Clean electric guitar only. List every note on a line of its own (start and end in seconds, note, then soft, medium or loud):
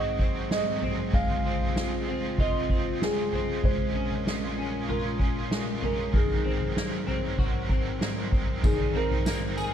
0.00 1.14 D#3 medium
0.00 0.51 G#3 medium
0.00 0.20 C4 medium
0.00 1.20 F#4 medium
0.20 0.82 C4 soft
0.51 1.13 G#3 medium
0.82 1.45 C4 medium
1.14 1.76 G#3 medium
1.45 2.06 C4 medium
1.76 3.01 G#3 medium
2.08 2.69 C4 medium
2.40 4.88 F4 medium
2.70 3.32 C4 medium
3.01 3.63 G#3 medium
3.33 3.70 C4 medium
3.64 4.25 G#3 medium
3.95 4.56 C#4 medium
4.26 5.50 G#3 medium
4.58 5.18 C#4 medium
4.89 6.20 F4 medium
5.20 5.81 C#4 medium
5.51 6.76 G#3 medium
5.82 6.20 C#4 medium
6.13 8.63 D#3 medium
6.44 7.06 C4 medium
6.76 8.01 A#3 medium
7.07 7.70 C4 medium
7.39 8.70 F#4 medium
7.70 8.31 C4 medium
8.01 8.98 A#3 soft
8.31 8.94 C4 soft
8.63 9.74 D#3 medium
8.95 9.74 C4 medium
9.26 9.74 A#3 medium
9.57 9.74 G#4 medium